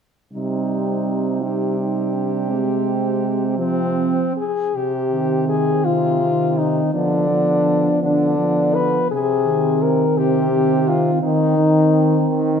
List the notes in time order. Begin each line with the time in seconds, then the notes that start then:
0.33 C3 G3 C4 D#4
1.43 G3 D#4 G4
1.79 D#4
2.14 D4
2.49 G#3 C4
3.58 F3 C4
4.36 G#4
4.75 C3 G4
5.11 D#3 C4
5.49 G#4
5.85 C3 F4
6.21 D#3 C4
6.58 D#4
6.94 D3 F3 B3 D4
7.29 F3 B3
8.02 D3 D4
8.38 F3 B3
8.75 B4
9.10 C3 G#4
9.45 D#3 C4
9.82 A#4
10.17 C3 G4
10.52 D#3 C4
10.88 F4
11.23 D#3 C4 D#4
11.57 D#3 C4
12.28 D#3